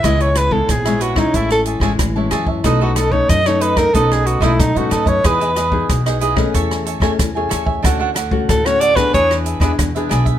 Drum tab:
HH |xxx-xxx-xxx-x-x-|x-x-xxxxxxxxxxxx|xxx-xxx-xxx-x-x-|x-x-xxxxxxxxxxxx|
SD |r-r-rr-r-r-rr-r-|r-r-rr-r-r-rr-r-|r-r-rr-r-r-rr-r-|r-r-rr-r-r-rr-r-|
BD |o--oo--oo--oo--o|o--oo--oo--oo--o|o--oo--oo--oo--o|o--oo--oo--oo--o|